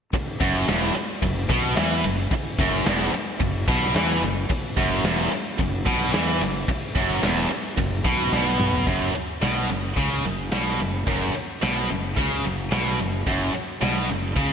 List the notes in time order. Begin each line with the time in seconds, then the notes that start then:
0.13 muted fingered electric bass stroke, muted distorted electric guitar stroke, kick, ride
0.40 F#1 F#2, kick, ride
0.68 E1 E2, snare, ride
0.95 muted distorted electric guitar stroke, muted fingered electric bass stroke, ride
1.22 F#1 F#2, kick, ride
1.49 B1 B2, kick, ride
1.76 E2 E3, snare, ride
2.04 F#1 F#2, ride
2.31 muted fingered electric bass stroke, muted distorted electric guitar stroke, kick, ride
2.59 F#1 F#2, kick, ride
2.86 E1 E2, snare, ride
3.14 muted distorted electric guitar stroke, muted fingered electric bass stroke, ride
3.40 F#1 F#2, kick, ride
3.68 B1 B2, kick, ride
3.83 snare
3.95 E2 E3, snare, ride
4.22 F#1 F#2, ride
4.50 muted fingered electric bass stroke, muted distorted electric guitar stroke, kick, ride
4.77 F#1 F#2, kick, ride
5.04 E1 E2, snare, ride
5.32 muted distorted electric guitar stroke, ride
5.59 F#1 F#2, kick, ride
5.86 B1 B2, kick, ride
6.01 snare
6.13 E2 E3, snare, ride
6.41 F#1 F#2, ride
6.68 muted fingered electric bass stroke, muted distorted electric guitar stroke, kick, ride
6.95 F#1 F#2, kick, ride
7.23 E1 E2, snare, ride
7.50 muted fingered electric bass stroke, muted distorted electric guitar stroke, ride
7.78 F#1 F#2, kick, ride
8.05 B1 B2, kick, ride
8.33 B1 B2, snare
8.60 mid tom
8.73 floor tom
8.87 F#1 F#2, kick, ride
9.15 muted distorted electric guitar stroke, muted fingered electric bass stroke, ride
9.42 B1 B2, snare, ride
9.69 F#1 F#2, ride
9.97 C#2 C#3, kick, ride
10.24 F#1 F#2, ride
10.52 B1 B2, snare, ride
10.80 F#1 F#2, ride
11.07 F#1 F#2, kick, ride
11.34 muted fingered electric bass stroke, muted distorted electric guitar stroke, ride
11.62 B1 B2, snare, ride
11.90 F#1 F#2, ride
12.17 C#2 C#3, kick, ride
12.45 F#1 F#2, ride
12.72 B1 B2, snare, ride
12.99 F#1 F#2, ride
13.27 F#1 F#2, kick, ride
13.54 muted distorted electric guitar stroke, muted fingered electric bass stroke, ride
13.82 B1 B2, snare, ride
14.09 F#1 F#2, ride
14.36 C#2 C#3, kick, ride